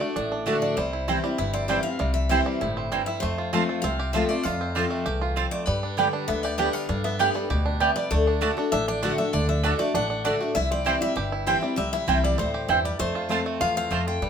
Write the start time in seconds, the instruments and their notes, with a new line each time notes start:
Already playing: five-string banjo D4, steel-string acoustic guitar D5
0.00 five-string banjo A3, steel-string acoustic guitar D4 F#4
0.16 upright bass A1, steel-string acoustic guitar A2, five-string banjo D4
0.32 five-string banjo D4
0.46 steel-string acoustic guitar D3 A3 D4 F#4, mandolin A3 F#4 D5 A5, five-string banjo A3
0.62 five-string banjo D4, steel-string acoustic guitar D5
0.77 upright bass C2, steel-string acoustic guitar C3 C5, five-string banjo G3
0.93 five-string banjo E4
1.08 steel-string acoustic guitar E3 G3 C4 E4, five-string banjo C4, mandolin C4 E4 C5 G5
1.24 five-string banjo G3, steel-string acoustic guitar C4 E4
1.38 upright bass G1, steel-string acoustic guitar G2 E5, five-string banjo E4
1.53 five-string banjo C4, steel-string acoustic guitar D5
1.68 steel-string acoustic guitar E3 G3 C4 E4 D5, five-string banjo G3, mandolin C4 E4 C5 G5
1.83 steel-string acoustic guitar C4 E4 F5
1.99 upright bass C2, steel-string acoustic guitar C3, five-string banjo G3
2.14 steel-string acoustic guitar E5
2.29 steel-string acoustic guitar E3 G3 C4 E4 C5, five-string banjo C4, mandolin C4 E4 C5 G5
2.46 five-string banjo G3
2.61 upright bass G1, steel-string acoustic guitar A2, five-string banjo E4
2.77 five-string banjo C4
2.92 steel-string acoustic guitar G2, five-string banjo G3, mandolin C4 E4 C5 G5
3.06 five-string banjo E4, steel-string acoustic guitar E5
3.20 steel-string acoustic guitar F2 C5, upright bass F2, five-string banjo A3
3.38 five-string banjo F4
3.53 steel-string acoustic guitar F3 A3 C4 F4, five-string banjo A3, mandolin C4 F4 C5 A5
3.69 five-string banjo F4
3.82 upright bass C2, steel-string acoustic guitar C3 F5, five-string banjo C4
3.99 five-string banjo G4
4.13 steel-string acoustic guitar F3 A3 C4 F4 E5, mandolin C4 F4 C5 A5, five-string banjo F4
4.29 five-string banjo A3, steel-string acoustic guitar C4 F4 D5
4.43 upright bass F2, steel-string acoustic guitar F2 F5, five-string banjo F4
4.61 five-string banjo C4
4.75 steel-string acoustic guitar F3 A3 C4 F4, mandolin C4 F4 C5 A5, five-string banjo G4
4.90 five-string banjo A3
5.06 upright bass C2, steel-string acoustic guitar E2, five-string banjo G4
5.21 five-string banjo F4
5.36 steel-string acoustic guitar F2, mandolin C4 F4 C5 A5, five-string banjo C4
5.51 five-string banjo A3, steel-string acoustic guitar D5
5.66 steel-string acoustic guitar G2 B4, upright bass G2, five-string banjo G3
5.83 five-string banjo D4
5.97 steel-string acoustic guitar D3 G3 B3 G4, five-string banjo G3, mandolin B3 G4 D5 G5
6.13 five-string banjo D4
6.28 upright bass D2, steel-string acoustic guitar D3 E5, five-string banjo B3
6.43 five-string banjo G4, steel-string acoustic guitar D5
6.58 steel-string acoustic guitar D3 G3 B3 G4 D5, mandolin B3 G4 D5 G5, five-string banjo D4
6.73 five-string banjo G3, steel-string acoustic guitar F5
6.89 steel-string acoustic guitar G2, upright bass G2, five-string banjo D4
7.04 five-string banjo B3, steel-string acoustic guitar E5
7.19 steel-string acoustic guitar D3 G3 B3 G4 D5, mandolin B3 G4 D5 G5, five-string banjo G4
7.34 five-string banjo G3, steel-string acoustic guitar B3 G4
7.50 upright bass D2, steel-string acoustic guitar B2, five-string banjo G4
7.66 five-string banjo D4
7.80 steel-string acoustic guitar C3, mandolin B3 G4 D5 G5, five-string banjo B3
7.96 five-string banjo G3, steel-string acoustic guitar D5
8.11 upright bass D2, steel-string acoustic guitar D3 A4, five-string banjo A3
8.27 five-string banjo D4
8.41 steel-string acoustic guitar D3 A3 D4 F#4, mandolin A3 F#4 D5 A5, five-string banjo A3
8.57 five-string banjo D4, steel-string acoustic guitar D4 F#4
8.72 upright bass A1, steel-string acoustic guitar A2 E5, five-string banjo D4
8.88 five-string banjo D4, steel-string acoustic guitar D5
9.03 steel-string acoustic guitar D3 A3 D4 F#4 F#5, five-string banjo A3, mandolin A3 F#4 D5 A5
9.18 five-string banjo D4, steel-string acoustic guitar D4 F#4 E5
9.33 upright bass D2, steel-string acoustic guitar D3 D5, five-string banjo D4
9.49 five-string banjo D4, steel-string acoustic guitar E5
9.63 steel-string acoustic guitar D3 A3 D4 F#4, mandolin A3 F#4 D5 A5, five-string banjo D4
9.79 five-string banjo A3, steel-string acoustic guitar D4 F#4 D5
9.94 upright bass A1, steel-string acoustic guitar A2 F#5, five-string banjo D4
10.10 five-string banjo D4
10.25 steel-string acoustic guitar D3 A3 D4 F#4 D5, mandolin A3 F#4 D5 A5, five-string banjo D4
10.41 five-string banjo A3, steel-string acoustic guitar D4 F#4
10.55 upright bass C2, steel-string acoustic guitar C3 E5, five-string banjo E4
10.71 five-string banjo C4, steel-string acoustic guitar D5
10.85 steel-string acoustic guitar E3 G3 C4 E4, mandolin C4 E4 C5 G5, five-string banjo G4
11.01 five-string banjo G3, steel-string acoustic guitar C4 E4 E5
11.16 upright bass G1, steel-string acoustic guitar G2, five-string banjo G4
11.32 five-string banjo E4
11.46 steel-string acoustic guitar E3 G3 C4 E4 G5, mandolin C4 E4 C5 G5, five-string banjo C4
11.61 five-string banjo G3, steel-string acoustic guitar C4 E4
11.76 upright bass C2, steel-string acoustic guitar C3 E5, five-string banjo G3
11.93 five-string banjo E4, steel-string acoustic guitar E5
12.07 upright bass C2, steel-string acoustic guitar E3 G3 C4 E4, five-string banjo G3, mandolin C4 E4 C5 G5
12.24 five-string banjo E4, steel-string acoustic guitar D5
12.38 upright bass D2, steel-string acoustic guitar A2 C5, five-string banjo C4
12.54 five-string banjo G4
12.68 upright bass E2, steel-string acoustic guitar G2, mandolin C4 E4 C5 G5, five-string banjo E4
12.85 five-string banjo G3, steel-string acoustic guitar D5
12.99 steel-string acoustic guitar F2 C5, upright bass F2, five-string banjo A3
13.15 five-string banjo F4
13.29 steel-string acoustic guitar F3 A3 C4 F4, five-string banjo C4, mandolin C4 F4 C5 A5
13.46 five-string banjo A3
13.61 upright bass E2, steel-string acoustic guitar E2 F5, five-string banjo F4
13.77 five-string banjo C4, steel-string acoustic guitar F5
13.91 steel-string acoustic guitar F2, upright bass F2, five-string banjo A3, mandolin C4 F4 C5 A5
14.07 five-string banjo F4, steel-string acoustic guitar G5
14.22 upright bass G2, steel-string acoustic guitar G2, five-string banjo G3